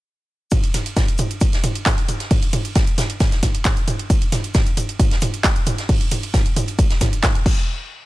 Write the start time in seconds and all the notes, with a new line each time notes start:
0.51 kick, closed hi-hat, mid tom, ride, shaker
0.64 closed hi-hat
0.74 snare, mid tom, open hi-hat, shaker
0.86 closed hi-hat
0.96 kick, snare, closed hi-hat, mid tom, ride, shaker
1.08 closed hi-hat
1.18 mid tom, open hi-hat, shaker
1.31 closed hi-hat
1.41 kick, closed hi-hat, mid tom, ride, shaker
1.53 snare, closed hi-hat
1.64 mid tom, open hi-hat, shaker
1.75 closed hi-hat
1.86 kick, snare, clap, closed hi-hat, mid tom, ride, shaker
1.98 closed hi-hat
2.08 mid tom, open hi-hat, shaker
2.20 snare, closed hi-hat
2.31 kick, closed hi-hat, mid tom, open hi-hat, ride
2.43 closed hi-hat
2.53 mid tom, open hi-hat, shaker
2.65 closed hi-hat
2.75 kick, snare, closed hi-hat, mid tom, ride, shaker
2.87 closed hi-hat
2.98 snare, mid tom, open hi-hat, shaker
3.10 closed hi-hat
3.20 kick, snare, closed hi-hat, mid tom, ride, shaker
3.32 snare, closed hi-hat
3.42 kick, snare, mid tom, open hi-hat, shaker
3.55 closed hi-hat
3.65 kick, snare, clap, closed hi-hat, mid tom, ride, shaker
3.77 closed hi-hat
3.88 mid tom, open hi-hat, shaker
3.99 closed hi-hat
4.10 kick, closed hi-hat, mid tom, ride, shaker
4.22 closed hi-hat
4.32 snare, mid tom, open hi-hat, shaker
4.44 closed hi-hat
4.54 kick, snare, closed hi-hat, mid tom, ride, shaker
4.67 closed hi-hat
4.77 mid tom, open hi-hat, shaker
4.89 closed hi-hat
4.99 kick, closed hi-hat, mid tom, ride, shaker
5.11 snare, closed hi-hat
5.21 mid tom, open hi-hat, shaker
5.34 closed hi-hat
5.44 kick, snare, clap, closed hi-hat, mid tom, ride, shaker
5.56 closed hi-hat
5.66 mid tom, open hi-hat, shaker
5.78 snare, closed hi-hat
5.89 kick, closed hi-hat, mid tom, open hi-hat, ride
6.01 closed hi-hat
6.11 mid tom, open hi-hat, shaker
6.23 closed hi-hat
6.34 kick, snare, closed hi-hat, mid tom, ride, shaker
6.46 closed hi-hat
6.56 mid tom, open hi-hat, shaker
6.67 closed hi-hat
6.79 kick, closed hi-hat, mid tom, ride, shaker
6.90 snare, closed hi-hat
7.01 kick, snare, mid tom, open hi-hat, shaker
7.13 closed hi-hat
7.23 kick, snare, clap, closed hi-hat, mid tom, ride, shaker
7.35 closed hi-hat
7.46 kick, crash